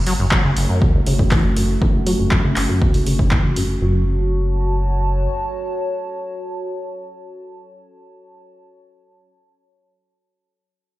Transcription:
0.00 0.14 F#1 loud
0.00 3.78 A3 medium
0.00 3.78 C#4 medium
0.00 3.78 F#4 medium
0.07 0.14 F#3 loud
0.07 open hi-hat loud
0.19 0.52 F#1 medium
0.19 0.26 F#2 medium
0.31 0.42 F#3 medium
0.31 kick loud
0.31 clap loud
0.44 0.51 C#3 medium
0.57 0.67 F#1 medium
0.57 0.66 F#1 medium
0.57 open hi-hat loud
0.69 0.83 F#2 medium
0.82 1.00 C#2 medium
0.82 0.86 F#3 loud
0.82 kick loud
0.94 1.01 F#1 medium
1.07 1.39 F#1 loud
1.07 1.14 C#3 medium
1.07 open hi-hat loud
1.19 1.23 A2 medium
1.19 kick medium
1.31 1.46 E3 medium
1.31 kick loud
1.31 clap loud
1.31 open hi-hat medium
1.44 1.77 F#1 medium
1.44 1.51 B2 medium
1.57 1.63 F#2 medium
1.57 open hi-hat loud
1.82 2.14 F#1 loud
1.82 1.86 F#2 loud
1.82 kick loud
1.94 2.01 F#1 medium
2.07 2.13 F#3 loud
2.07 open hi-hat loud
2.19 2.52 F#1 medium
2.19 2.26 F#2 medium
2.31 2.42 F#3 medium
2.31 kick loud
2.31 clap loud
2.44 2.51 C#3 medium
2.56 2.66 F#1 medium
2.56 2.67 F#1 medium
2.56 clap medium
2.56 open hi-hat loud
2.69 2.83 F#2 medium
2.82 3.00 C#2 medium
2.82 2.86 F#3 loud
2.82 kick loud
2.94 3.01 F#1 medium
2.94 open hi-hat medium
3.06 3.39 F#1 loud
3.06 3.14 C#3 medium
3.06 open hi-hat loud
3.19 3.23 A2 medium
3.19 kick medium
3.31 3.46 E3 medium
3.31 kick loud
3.31 clap loud
3.44 3.77 F#1 medium
3.44 3.51 B2 medium
3.56 3.64 F#2 medium
3.56 open hi-hat loud
3.81 5.27 F#1 medium
3.81 4.05 F#2 medium
3.81 8.52 F#4 medium
3.81 8.52 C#5 medium
3.81 8.52 A5 medium

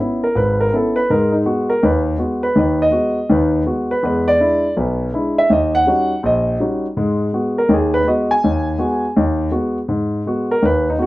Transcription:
0.00 0.25 B3 medium
0.00 0.25 C#4 soft
0.00 0.25 E4 medium
0.24 0.36 A#4 medium
0.35 0.68 G#1 medium
0.35 0.60 B4 medium
0.61 0.73 A#4 medium
0.73 0.98 B3 soft
0.73 0.98 C#4 soft
0.73 0.99 E4 medium
0.73 0.97 A4 medium
0.96 1.09 B4 medium
1.10 1.42 G#2 medium
1.10 1.41 G#3 medium
1.10 1.33 A#4 medium
1.32 1.45 D#4 medium
1.46 1.71 G#3 medium
1.46 1.71 B3 soft
1.46 1.71 F#4 medium
1.70 1.82 A#4 medium
1.83 2.15 D#2 medium
1.83 1.98 B4 medium
2.18 2.44 G#3 soft
2.18 2.44 B3 soft
2.18 2.44 F#4 medium
2.43 2.55 B4 medium
2.55 2.87 D#2 medium
2.55 2.87 D#3 medium
2.55 2.81 B4 medium
2.82 3.27 D#5 medium
2.91 3.17 G#3 soft
2.91 3.17 B3 soft
2.91 3.17 F#4 medium
3.29 3.61 D#2 medium
3.29 3.61 D#3 medium
3.29 3.65 B4 medium
3.66 3.91 G#3 soft
3.66 3.91 B3 soft
3.66 3.92 F#4 medium
3.91 4.03 B4 medium
4.03 4.35 E2 medium
4.03 4.34 G#3 medium
4.03 4.27 B4 medium
4.28 4.73 D5 loud
4.40 4.65 G#3 medium
4.40 4.65 D4 soft
4.40 4.65 E4 medium
4.77 5.08 B1 medium
4.77 5.12 B4 medium
5.13 5.38 G#3 soft
5.13 5.38 D4 soft
5.13 5.38 E4 medium
5.38 5.50 E5 loud
5.50 5.81 D#2 medium
5.50 5.74 D#5 medium
5.75 6.20 F#5 loud
5.87 6.12 G3 medium
5.87 6.12 C#4 soft
5.87 6.12 D#4 medium
5.87 6.12 F#4 medium
6.23 6.55 A#1 medium
6.23 6.58 D#5 medium
6.60 6.85 G3 soft
6.60 6.85 C#4 soft
6.60 6.85 D#4 soft
6.60 6.85 F#4 medium
6.97 7.28 G#2 medium
6.97 7.28 G#3 medium
7.33 7.58 G#3 medium
7.33 7.58 B3 soft
7.33 7.58 F#4 medium
7.58 7.70 A#4 medium
7.69 8.01 D#2 medium
7.74 7.95 G#4 medium
7.94 8.06 B4 medium
8.07 8.32 G#3 medium
8.07 8.31 B3 soft
8.07 8.32 F#4 medium
8.07 8.30 D#5 medium
8.31 9.12 G#5 loud
8.44 8.75 D#2 medium
8.78 9.04 G#3 medium
8.78 9.04 B3 medium
8.78 9.04 F#4 medium
9.17 9.48 D#2 medium
9.52 9.77 G#3 medium
9.52 9.77 B3 soft
9.52 9.77 F#4 medium
9.88 10.21 G#2 medium
10.26 10.51 G#3 soft
10.26 10.52 B3 soft
10.26 10.52 F#4 medium
10.51 10.63 A#4 medium
10.62 10.94 D#2 medium
10.62 10.87 B4 medium
10.90 11.01 D#4 medium
10.98 11.06 G#3 soft
10.98 11.06 B3 soft
10.98 11.01 F#4 medium
10.98 11.06 F#4 medium

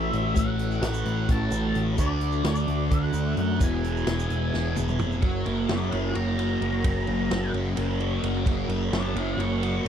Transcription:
0.00 0.12 A1 medium
0.00 0.34 A2 medium
0.00 0.35 E3 medium
0.00 0.37 A3 medium
0.00 3.56 A3 medium
0.00 3.56 F#4 medium
0.00 1.95 C#5 medium
0.00 0.15 E5 medium
0.13 0.35 A1 medium
0.13 0.36 E5 medium
0.13 closed hi-hat medium
0.35 0.79 A1 medium
0.35 1.97 A2 medium
0.35 1.97 E3 medium
0.35 1.98 A3 medium
0.35 0.81 F#5 loud
0.35 kick loud
0.35 closed hi-hat loud
0.35 shaker medium
0.59 closed hi-hat medium
0.71 shaker soft
0.81 1.04 A1 medium
0.81 snare loud
0.81 closed hi-hat loud
0.86 1.31 F#5 loud
0.94 shaker medium
1.05 1.27 A1 medium
1.05 closed hi-hat medium
1.29 1.50 A1 medium
1.29 1.79 A5 medium
1.29 kick loud
1.29 closed hi-hat loud
1.51 1.73 A1 medium
1.51 closed hi-hat medium
1.51 shaker medium
1.75 1.97 A1 medium
1.75 closed hi-hat medium
1.97 2.42 D2 medium
1.97 3.59 D3 medium
1.97 3.59 A3 medium
1.97 3.60 D4 loud
1.97 3.59 D5 medium
1.97 2.46 D5 loud
1.97 kick loud
1.97 closed hi-hat loud
1.97 shaker medium
2.21 closed hi-hat medium
2.32 shaker soft
2.44 2.66 D2 medium
2.44 2.94 D5 medium
2.44 snare loud
2.44 closed hi-hat medium
2.56 shaker medium
2.68 2.89 D2 medium
2.68 closed hi-hat medium
2.91 3.13 D2 medium
2.91 3.38 F#5 medium
2.91 kick loud
2.91 closed hi-hat medium
3.13 3.35 D2 medium
3.13 closed hi-hat medium
3.13 shaker medium
3.37 3.62 F#2 medium
3.37 3.60 F#5 medium
3.37 closed hi-hat medium
3.60 4.04 E1 medium
3.60 5.21 E2 medium
3.60 5.22 B2 medium
3.60 5.22 E3 medium
3.60 5.21 B3 medium
3.60 5.21 G#4 medium
3.60 5.21 E5 medium
3.60 kick loud
3.60 closed hi-hat medium
3.60 shaker medium
3.64 4.74 G#5 medium
3.84 closed hi-hat medium
3.84 shaker soft
3.97 shaker soft
4.07 4.28 E1 medium
4.07 snare loud
4.07 closed hi-hat medium
4.19 shaker medium
4.29 4.51 E1 medium
4.29 closed hi-hat medium
4.29 shaker soft
4.54 4.75 E1 medium
4.54 snare medium
4.54 shaker soft
4.76 4.99 E1 medium
4.76 high tom medium
4.76 shaker medium
4.88 mid tom medium
4.88 shaker soft
4.99 5.22 F1 medium
4.99 mid tom medium
4.99 shaker soft
5.11 shaker soft
5.21 5.43 F#1 medium
5.21 9.88 F#2 medium
5.21 5.69 F#3 medium
5.21 9.88 A#3 medium
5.21 9.88 F#4 medium
5.21 9.88 C#5 medium
5.21 kick loud
5.21 ride medium
5.46 5.67 F#1 medium
5.46 6.15 A#3 medium
5.46 ride medium
5.69 5.89 F#1 medium
5.69 6.85 F#3 medium
5.69 5.92 A#4 medium
5.69 5.93 F#5 medium
5.69 snare loud
5.69 ride medium
5.92 6.13 F#1 medium
5.92 7.53 C#4 medium
5.92 6.14 C#5 medium
5.92 6.15 A5 medium
5.92 ride medium
6.15 6.56 F#1 medium
6.15 6.62 A#3 medium
6.15 7.50 A#5 medium
6.15 ride medium
6.38 8.00 F#4 medium
6.38 ride medium
6.61 6.82 F#1 medium
6.61 7.07 A#3 medium
6.61 ride medium
6.84 7.05 F#1 medium
6.84 7.29 F#3 medium
6.84 kick loud
6.84 ride loud
7.07 7.28 F#1 medium
7.07 7.76 A#3 medium
7.07 ride medium
7.29 7.52 F#1 medium
7.29 8.46 F#3 medium
7.29 snare loud
7.29 ride medium
7.53 7.74 F#1 medium
7.53 9.15 C#4 medium
7.53 ride medium
7.77 8.18 F#1 medium
7.77 8.22 A#3 medium
7.77 ride loud
8.00 9.62 F#4 medium
8.00 ride medium
8.23 8.44 F#1 medium
8.23 8.68 A#3 medium
8.23 ride medium
8.46 8.67 F#1 medium
8.46 8.91 F#3 medium
8.46 kick loud
8.46 ride loud
8.68 8.89 F#1 medium
8.68 9.39 A#3 medium
8.68 ride medium
8.92 9.13 F#1 medium
8.92 9.88 F#3 medium
8.92 9.16 A#4 medium
8.92 9.16 F#5 loud
8.92 snare loud
8.92 ride medium
9.15 9.36 F#1 medium
9.15 9.88 C#4 medium
9.15 9.39 C#5 medium
9.15 9.40 A5 medium
9.15 ride medium
9.37 9.79 F#1 medium
9.37 9.86 A#3 medium
9.37 9.88 C#6 medium
9.37 ride medium
9.63 9.88 F#4 medium
9.63 ride medium
9.85 9.88 F#1 medium

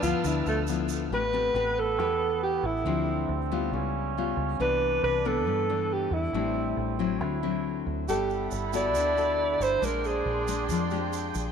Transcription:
0.00 0.13 D2 medium
0.00 0.22 G2 medium
0.00 0.64 F3 medium
0.00 0.65 B3 medium
0.00 0.65 E4 medium
0.00 0.28 F4 loud
0.00 1.10 B4 medium
0.00 1.10 A5 medium
0.00 1.08 E6 medium
0.00 1.09 F6 medium
0.00 shaker medium
0.24 0.45 D2 loud
0.24 1.09 D3 medium
0.24 0.47 E4 medium
0.24 shaker medium
0.46 1.07 D2 medium
0.46 0.61 A3 medium
0.46 shaker soft
0.67 1.10 F3 medium
0.67 1.10 B3 medium
0.67 1.11 E4 medium
0.67 shaker medium
0.89 shaker medium
1.11 1.52 A1 medium
1.11 1.97 A3 medium
1.11 2.87 B3 medium
1.11 1.25 C4 medium
1.11 1.25 G4 medium
1.11 1.25 B4 medium
1.11 1.81 B4 loud
1.33 1.52 C4 medium
1.33 1.52 G4 medium
1.33 1.52 B4 medium
1.54 1.98 A1 medium
1.54 1.83 C4 medium
1.54 1.83 G4 medium
1.54 1.84 B4 medium
1.79 2.42 A4 loud
1.98 2.60 E2 medium
1.98 2.84 E3 medium
1.98 2.83 G4 medium
1.98 2.83 B4 medium
2.43 2.67 G4 medium
2.63 2.84 A1 medium
2.63 3.52 E4 medium
2.85 3.26 D2 medium
2.85 3.71 D3 medium
2.85 3.29 F3 medium
2.85 3.75 C4 medium
2.85 3.29 C4 medium
2.85 3.29 E4 medium
3.29 3.73 D2 medium
3.52 4.13 G3 medium
3.52 4.13 B3 medium
3.52 4.13 F4 medium
3.72 4.34 C#2 medium
3.72 4.58 C#3 medium
3.72 4.63 C#4 loud
4.17 4.59 G3 soft
4.17 4.59 B3 medium
4.17 4.59 F4 medium
4.37 4.58 C#2 loud
4.59 5.00 C2 medium
4.59 5.45 C3 medium
4.59 5.22 E3 medium
4.59 5.22 B3 medium
4.59 5.22 D4 medium
4.59 6.08 D4 loud
4.59 5.01 B4 loud
5.03 5.47 C2 medium
5.03 5.28 B4 loud
5.25 5.65 E3 medium
5.25 5.65 B3 medium
5.25 5.66 D4 medium
5.25 5.94 A4 loud
5.47 6.08 G2 medium
5.47 6.32 G2 medium
5.70 6.31 E3 medium
5.70 6.31 B3 soft
5.70 6.31 D4 medium
5.93 6.15 G4 medium
6.11 6.32 E2 loud
6.11 7.00 E4 medium
6.33 6.74 A1 medium
6.33 7.19 A2 medium
6.33 6.96 G3 medium
6.33 7.21 C4 medium
6.33 6.96 C4 medium
6.33 6.96 D4 medium
6.77 7.21 A1 medium
6.99 7.39 F#3 medium
6.99 7.40 C4 medium
6.99 7.40 E4 medium
7.20 7.82 D2 medium
7.20 8.06 D3 medium
7.20 7.86 E4 medium
7.43 8.05 F#3 soft
7.43 8.05 C4 medium
7.43 8.05 E4 medium
7.86 8.07 D2 medium
8.09 8.49 G1 medium
8.09 8.93 G3 medium
8.09 8.52 B3 medium
8.09 9.83 E4 loud
8.09 8.49 G4 medium
8.09 9.81 A4 medium
8.09 8.52 A4 medium
8.09 9.81 F#5 medium
8.09 9.81 B5 medium
8.09 shaker medium
8.30 shaker soft
8.51 8.95 G1 medium
8.51 shaker medium
8.73 9.13 B3 medium
8.73 9.14 F#4 medium
8.73 9.14 A4 medium
8.73 9.64 D5 loud
8.73 shaker medium
8.95 9.56 D2 medium
8.95 9.81 D3 medium
8.95 shaker medium
9.16 9.79 B3 soft
9.16 9.79 F#4 soft
9.16 9.79 A4 medium
9.16 shaker soft
9.60 9.80 G1 medium
9.60 9.86 C5 medium
9.60 shaker medium
9.81 10.22 A#1 medium
9.81 10.67 A#2 medium
9.81 10.44 G#3 medium
9.81 11.52 D4 loud
9.81 10.44 D4 medium
9.81 10.08 A#4 medium
9.81 11.52 D5 medium
9.81 11.52 G5 medium
9.81 11.52 C6 medium
9.81 shaker medium
10.04 10.92 G#4 medium
10.04 shaker soft
10.26 10.70 A#1 loud
10.48 10.88 G#3 medium
10.48 10.88 D4 medium
10.48 shaker medium
10.69 11.30 F2 medium
10.69 11.52 F3 medium
10.69 shaker medium
10.90 11.52 G#3 medium
10.90 11.52 D4 medium
10.90 11.52 G4 medium
10.90 shaker soft
11.13 shaker medium
11.34 11.52 A#1 loud
11.34 shaker medium

